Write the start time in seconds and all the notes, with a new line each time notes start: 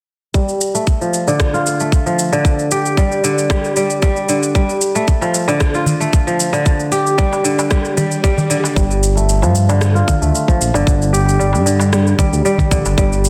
0.34 G3, kick, shaker
0.49 shaker
0.61 shaker
0.75 A3, shaker
0.87 kick, shaker
1.01 F3, shaker
1.14 shaker
1.27 D3, shaker
1.40 kick, cross-stick, shaker
1.54 F4, shaker
1.66 shaker
1.80 A3, shaker
1.92 kick, shaker
2.06 F3, shaker
2.19 shaker
2.32 D3, shaker
2.45 kick, shaker
2.59 shaker
2.71 G4, shaker
2.86 shaker
2.97 G3, kick, shaker
3.12 shaker
3.24 D3, shaker
3.38 shaker
3.50 G3, kick, cross-stick, shaker
3.64 shaker
3.76 G3, shaker
3.90 shaker
4.02 G3, kick, shaker
4.16 shaker
4.29 D3, shaker
4.43 shaker
4.55 G3, kick, shaker
4.69 shaker
4.81 shaker
4.95 A3, darbuka ka, shaker
5.08 kick, shaker
5.21 F3, darbuka tek, shaker
5.34 darbuka ka, shaker
5.48 D3, darbuka tek, shaker
5.60 kick, cross-stick, shaker
5.74 F4, shaker
5.86 darbuka dum, shaker
6.00 A3, shaker
6.13 kick, shaker
6.27 F3, shaker
6.40 shaker
6.53 D3, darbuka tek, shaker
6.66 kick, shaker
6.80 shaker
6.92 G4, shaker
7.06 darbuka ka, shaker
7.18 G3, kick, shaker
7.33 darbuka tek, shaker
7.44 D3, darbuka ka, shaker
7.59 darbuka tek, shaker
7.71 G3, kick, cross-stick, swell, shaker
7.85 shaker
7.97 G3, darbuka dum, shaker
8.12 shaker
8.24 G3, kick, shaker
8.38 darbuka dum, shaker
8.50 D3, shaker
8.64 darbuka tek, shaker
8.76 G1 G3, kick, shaker
8.91 shaker
9.03 shaker
9.16 A3, darbuka ka, shaker
9.29 shaker
9.42 G2 F3, darbuka tek, shaker
9.55 shaker
9.69 D3, darbuka tek, shaker
9.81 cross-stick, shaker
9.95 F4, shaker
10.08 kick, darbuka dum, shaker
10.21 D2 A3, shaker
10.35 shaker
10.48 F3, kick, shaker
10.61 A#1, shaker
10.74 G1 D3, darbuka tek, shaker
10.87 G1, kick, shaker
11.02 shaker
11.13 G4, shaker
11.26 darbuka ka, shaker
11.39 G3, shaker
11.53 G2, darbuka tek, shaker
11.66 D3, darbuka ka, shaker
11.80 darbuka tek, shaker
11.93 G3, cross-stick, shaker
12.07 shaker
12.18 G3, kick, darbuka dum, shaker
12.33 D2, shaker
12.45 G3, shaker
12.58 kick, darbuka dum, shaker
12.71 A#1 D3, kick, shaker
12.85 G1, darbuka tek, shaker
12.98 G1 G3, kick, shaker
13.13 shaker
13.25 shaker